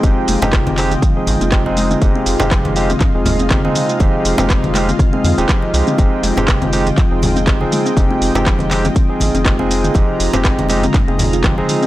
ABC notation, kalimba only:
X:1
M:4/4
L:1/16
Q:"Swing 16ths" 1/4=121
K:Fm
V:1 name="Kalimba"
z2 A, C C, C z F F, z2 C z2 A, C | C, C z F F, z2 C z2 A, C C, C z F | F, z2 C z2 A, C C, C z F F, z2 C | z2 A, C C, C z F F, z2 C z2 A, C |
C, C z F F, z2 C z2 A, C C, C z F | F, z2 C z2 A, C C, C z F F, z2 C |]